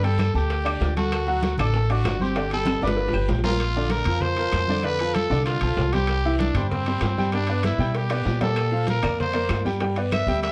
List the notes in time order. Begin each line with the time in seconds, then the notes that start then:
Already playing: G2
0.03 G3 G4 A4 G5, high conga, high timbale
0.19 high bongo, high conga, high timbale, low timbale, short guiro, claves
0.34 D2 A3 G4 A4 A5, high bongo, high conga, short guiro
0.50 high bongo, high conga, high timbale, long guiro
0.65 D4 D5 D6, high bongo, high conga, high timbale, claves
0.81 D2, high bongo, low bongo, high conga, low timbale, short guiro
0.96 A3 F#4 A4 A5, high bongo, high conga, high timbale, short guiro
1.12 high bongo, high conga, high timbale, long guiro, claves
1.27 F#3 F#4 F#5, high conga
1.43 high bongo, high conga, high timbale, low timbale, short guiro
1.58 A1 D4 A4 D5 D6, high conga, low conga, high timbale, short guiro, claves
1.73 A3 A4 A5, high bongo, high conga, long guiro
1.89 D4 F#4 D5 D6, high conga, high timbale
2.04 G1, high bongo, low bongo, high conga, high timbale, low timbale, short guiro, claves
2.20 C4 G4 C5 C6, high conga, short guiro
2.35 D3 D4 D5, high bongo, high conga, high timbale, long guiro
2.51 G3 G4 A4 G5, high conga, high timbale
2.66 high bongo, high conga, high timbale, short guiro, claves
2.82 G1 D4 B4 D5 D6, high bongo, high conga, short guiro
2.87 low timbale
2.97 high bongo, high conga, long guiro
3.08 low timbale
3.13 G1 G4 G5 G6, low bongo, high conga, claves
3.28 A#1, low bongo, high conga, low timbale, short guiro
3.39 low timbale
3.43 A#3 F4 A#4 A#5, low bongo, high conga, short guiro
3.50 low timbale
3.59 high bongo, high conga, high timbale, long guiro
3.75 D3 D4 D5, high conga
3.90 A#4, high bongo, high conga, high timbale, low timbale, short guiro
4.05 F2 F3 F4 A#4, high conga, low conga, high timbale, short guiro
4.21 C5, high bongo, high conga, low conga, long guiro
4.37 F3 F4 A#4, high conga, high timbale
4.52 F2, high bongo, low bongo, high conga, high timbale, low timbale, short guiro
4.68 D3 D4 D5, high conga, short guiro
4.83 D3 D4 B4 D5, high bongo, high conga, high timbale, long guiro
4.99 F3 F4 A4, high conga, high timbale
5.14 A4, high bongo, high conga, high timbale, low timbale, short guiro
5.30 C2 D3 D4 D5, high conga, short guiro
5.46 F4, high bongo, high conga, high timbale, long guiro
5.61 B1 F3 F4 A4, high bongo, high conga, high timbale
5.77 C2, high bongo, low bongo, high conga, low timbale, short guiro
5.93 G3 G4 C5, high conga, high timbale, short guiro
6.07 high bongo, high conga, high timbale, long guiro
6.25 E3 E4 E5, high conga
6.38 D4, high bongo, high conga, high timbale, low timbale, short guiro
6.54 G2 G3 G4 C5, high conga, low conga, high timbale, short guiro
6.70 C4, high bongo, high conga, low conga, long guiro
6.86 G3 G4 C5, high conga, high timbale
7.01 G2, high bongo, low bongo, high conga, high timbale, low timbale, short guiro
7.18 G3 G4 G5, high conga, short guiro
7.32 G3 D4 G4 G5, high bongo, high conga, high timbale, long guiro
7.47 B3 B4 D5, high conga, high timbale
7.63 E4, high bongo, high conga, high timbale, low timbale, short guiro
7.78 B2 G3 G4 G5, high bongo, high conga, short guiro
7.95 G4, high bongo, high conga, high timbale, long guiro
8.10 B3 B4 D5, high bongo, high conga, high timbale
8.25 A#2, low bongo, high conga, low timbale, short guiro
8.40 A#3 G4 A4 D5, low bongo, high conga, high timbale, short guiro
8.56 high bongo, high conga, high timbale, long guiro, claves
8.71 F3 F4 F5, high conga
8.87 A#4, high bongo, high conga, high timbale, low timbale, short guiro
9.03 F2 A#3 A#4 D5, high conga, low conga, high timbale, short guiro, claves
9.19 C5, high bongo, high conga, low conga, long guiro
9.33 A#3 A#4 D5, high conga, high timbale
9.49 G2, high bongo, low bongo, high conga, high timbale, low timbale, short guiro, claves
9.65 G3 G4 G5, high conga, short guiro
9.80 G3 G4 G5, high bongo, high conga, high timbale, long guiro
9.96 B3 B4 D5, high conga, high timbale
10.11 E5, high bongo, high conga, high timbale, low timbale, short guiro, claves
10.27 D2 G3 G4 G5, high bongo, high conga, short guiro
10.43 F5, high bongo, high conga, high timbale, long guiro